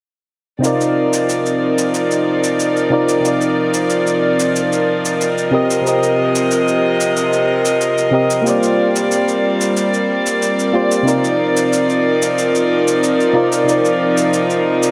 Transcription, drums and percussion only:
0.64 shaker soft
0.81 shaker soft
1.13 shaker medium
1.29 shaker soft
1.46 shaker soft
1.78 shaker medium
1.94 shaker soft
2.11 shaker soft
2.44 shaker medium
2.60 shaker soft
2.76 shaker soft
3.09 shaker medium
3.25 shaker soft
3.41 shaker soft
3.74 shaker medium
3.90 shaker medium
4.07 shaker soft
4.40 shaker medium
4.56 shaker soft
4.72 shaker soft
5.05 shaker medium
5.21 shaker soft
5.38 shaker soft
5.70 shaker medium
5.87 shaker soft
6.03 shaker soft
6.35 shaker medium
6.51 shaker soft
6.68 shaker soft
7.00 shaker medium
7.16 shaker soft
7.33 shaker soft
7.65 shaker medium
7.81 shaker soft
7.98 shaker soft
8.30 shaker medium
8.46 shaker soft
8.63 shaker soft
8.96 shaker medium
9.11 shaker soft
9.28 shaker soft
9.61 shaker medium
9.77 shaker soft
9.94 shaker soft
10.26 shaker medium
10.42 shaker soft
10.59 shaker soft
10.91 shaker medium
11.08 shaker soft
11.24 shaker soft
11.57 shaker medium
11.73 shaker medium
11.89 shaker soft
12.22 shaker medium
12.38 shaker soft
12.55 shaker soft
12.88 shaker medium
13.03 shaker soft
13.20 shaker soft
13.52 shaker medium
13.69 shaker soft
13.85 shaker soft
14.17 shaker medium
14.33 shaker soft
14.50 shaker soft
14.83 shaker medium

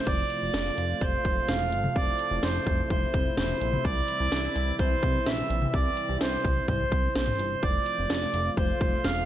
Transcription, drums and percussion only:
0.07 kick loud
0.07 closed hi-hat medium
0.07 crash medium
0.30 closed hi-hat medium
0.54 snare loud
0.54 closed hi-hat medium
0.78 closed hi-hat medium
1.01 kick medium
1.01 closed hi-hat medium
1.25 kick loud
1.25 closed hi-hat medium
1.48 snare loud
1.48 closed hi-hat medium
1.72 closed hi-hat medium
1.84 mid tom medium
1.96 kick loud
1.96 closed hi-hat medium
2.19 closed hi-hat medium
2.43 snare loud
2.43 closed hi-hat medium
2.67 kick loud
2.67 closed hi-hat medium
2.90 kick medium
2.90 closed hi-hat medium
3.14 kick loud
3.14 closed hi-hat medium
3.37 snare loud
3.37 closed hi-hat medium
3.61 closed hi-hat medium
3.73 mid tom medium
3.85 kick loud
3.85 closed hi-hat medium
4.08 closed hi-hat medium
4.32 snare loud
4.32 closed hi-hat medium
4.56 closed hi-hat medium
4.79 kick medium
4.79 closed hi-hat medium
5.03 kick loud
5.03 closed hi-hat medium
5.26 snare loud
5.26 closed hi-hat medium
5.50 closed hi-hat medium
5.62 mid tom medium
5.74 kick loud
5.74 closed hi-hat medium
5.97 closed hi-hat medium
6.21 snare loud
6.21 closed hi-hat medium
6.45 kick loud
6.45 closed hi-hat medium
6.68 kick medium
6.68 closed hi-hat medium
6.68 mid tom medium
6.92 kick loud
6.92 closed hi-hat medium
7.15 snare loud
7.15 closed hi-hat medium
7.28 mid tom medium
7.39 closed hi-hat medium
7.63 kick loud
7.63 closed hi-hat medium
7.86 closed hi-hat medium
8.10 snare loud
8.10 closed hi-hat medium
8.34 closed hi-hat medium
8.57 kick loud
8.57 closed hi-hat medium
8.81 kick loud
8.81 closed hi-hat medium
9.04 snare loud
9.04 closed hi-hat medium

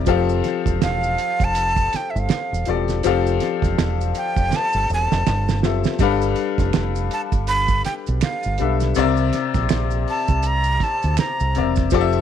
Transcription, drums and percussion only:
0.06 kick loud
0.06 closed hi-hat medium
0.06 maracas medium
0.29 maracas soft
0.44 snare soft
0.44 closed hi-hat medium
0.66 kick medium
0.66 maracas soft
0.82 finger snap medium
0.82 snare loud
0.82 closed hi-hat medium
0.82 maracas medium
1.03 maracas soft
1.18 closed hi-hat medium
1.40 kick loud
1.40 closed hi-hat soft
1.40 maracas soft
1.55 closed hi-hat medium
1.55 maracas medium
1.76 kick medium
1.76 maracas medium
1.93 snare soft
1.93 closed hi-hat medium
2.16 maracas soft
2.29 finger snap medium
2.29 snare loud
2.29 closed hi-hat medium
2.29 maracas medium
2.54 maracas medium
2.65 closed hi-hat medium
2.88 snare soft
2.88 closed hi-hat soft
2.88 maracas soft
3.03 closed hi-hat medium
3.03 maracas medium
3.27 maracas soft
3.40 snare soft
3.40 closed hi-hat medium
3.62 kick medium
3.62 snare soft
3.62 closed hi-hat soft
3.62 maracas medium
3.78 finger snap medium
3.78 snare loud
3.78 closed hi-hat medium
3.78 maracas medium
4.01 maracas soft
4.15 closed hi-hat medium
4.15 maracas soft
4.36 kick loud
4.36 closed hi-hat soft
4.36 maracas soft
4.52 snare medium
4.52 maracas medium
4.73 maracas medium
4.90 maracas soft
5.12 snare medium
5.12 maracas soft
5.27 finger snap medium
5.27 snare medium
5.27 maracas medium
5.49 snare medium
5.49 maracas medium
5.63 snare loud
5.63 maracas medium
5.84 snare medium
5.84 maracas soft
5.99 kick loud
5.99 closed hi-hat medium
5.99 maracas medium
6.21 maracas soft
6.36 closed hi-hat medium
6.58 kick medium
6.58 snare soft
6.58 closed hi-hat soft
6.58 maracas medium
6.73 finger snap medium
6.73 snare loud
6.73 closed hi-hat medium
6.73 maracas medium
6.96 maracas soft
7.11 closed hi-hat medium
7.32 kick medium
7.32 closed hi-hat soft
7.32 maracas soft
7.47 closed hi-hat medium
7.47 maracas medium
7.68 kick medium
7.68 maracas soft
7.85 snare soft
7.85 closed hi-hat medium
8.06 closed hi-hat soft
8.06 maracas soft
8.21 finger snap medium
8.21 snare medium
8.21 closed hi-hat medium
8.21 maracas medium
8.43 maracas medium
8.58 closed hi-hat medium
8.80 snare soft
8.80 closed hi-hat soft
8.80 maracas medium
8.95 closed hi-hat medium
8.95 maracas medium
9.17 maracas soft
9.33 snare soft
9.33 closed hi-hat medium
9.54 kick medium
9.54 snare soft
9.54 maracas medium
9.69 finger snap medium
9.69 snare loud
9.69 closed hi-hat medium
9.69 maracas medium
9.91 maracas soft
10.08 open hi-hat medium
10.28 kick loud
10.28 closed hi-hat soft
10.28 maracas medium
10.43 closed hi-hat medium
10.43 maracas medium
10.64 maracas medium
10.80 kick medium
10.80 snare soft
10.80 closed hi-hat medium
11.02 closed hi-hat soft
11.02 maracas soft
11.17 finger snap medium
11.17 snare loud
11.17 closed hi-hat medium
11.17 maracas medium
11.40 maracas soft
11.55 closed hi-hat medium
11.76 kick loud
11.76 snare soft
11.76 closed hi-hat soft
11.76 maracas medium
11.90 kick loud
11.90 closed hi-hat medium
11.90 maracas medium
12.13 maracas soft

